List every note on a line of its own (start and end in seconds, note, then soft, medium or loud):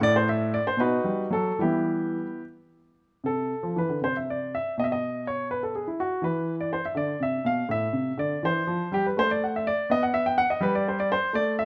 0.01 0.56 A2 medium
0.01 0.15 D5 loud
0.16 0.27 C5 medium
0.29 0.53 E5 medium
0.54 0.66 D5 medium
0.67 0.79 C5 medium
0.77 0.96 B2 medium
0.77 1.29 D#4 medium
0.77 1.29 F#4 medium
0.77 1.25 B4 medium
1.04 1.24 G3 soft
1.30 1.51 F#3 medium
1.30 1.59 A4 medium
1.59 2.17 E3 soft
1.59 2.25 G3 soft
1.59 2.40 B3 soft
1.59 2.40 E4 soft
1.59 2.43 G4 medium
3.24 3.52 C3 soft
3.24 3.77 A4 medium
3.63 3.75 F3 soft
3.76 3.88 E3 soft
3.76 3.99 B4 medium
3.89 4.01 D3 soft
4.01 4.55 C3 soft
4.01 4.15 C5 medium
4.17 4.28 E5 soft
4.30 4.53 D5 medium
4.55 4.74 E5 medium
4.78 5.82 B2 soft
4.78 4.84 D#5 medium
4.84 4.90 E5 medium
4.92 5.25 D#5 medium
5.27 5.46 C#5 medium
5.51 5.62 B4 medium
5.63 5.74 A4 soft
5.75 5.86 G#4 soft
5.88 5.99 E4 soft
6.00 6.23 F#4 medium
6.22 6.74 E3 soft
6.22 6.54 B4 medium
6.61 6.72 D5 medium
6.73 6.84 C5 medium
6.85 6.96 E5 medium
6.95 7.13 D3 soft
6.95 7.21 D5 medium
7.20 7.38 C3 soft
7.20 7.46 E5 medium
7.45 7.62 B2 soft
7.45 7.66 F5 medium
7.69 7.86 A2 soft
7.69 8.19 E5 medium
7.93 8.11 C3 soft
8.17 8.35 D3 soft
8.17 8.43 D5 medium
8.43 8.60 E3 soft
8.43 8.92 C5 medium
8.67 8.84 F3 medium
8.92 9.09 G3 soft
8.92 9.04 G4 medium
9.06 9.17 B4 medium
9.17 9.68 A3 soft
9.17 9.29 C5 medium
9.31 9.41 D5 medium
9.44 9.54 F#5 medium
9.56 9.66 E5 medium
9.67 9.89 D5 medium
9.90 10.41 B3 medium
9.90 10.01 D#5 medium
10.03 10.13 F#5 medium
10.14 10.25 E5 medium
10.26 10.37 G5 medium
10.38 10.49 F#5 medium
10.50 10.61 D#5 medium
10.61 11.12 G3 medium
10.61 10.73 B4 medium
10.75 10.86 D5 medium
10.88 10.98 C5 medium
11.00 11.10 D5 medium
11.12 11.34 C5 medium
11.33 11.65 A3 medium
11.33 11.54 D5 medium
11.59 11.65 E5 medium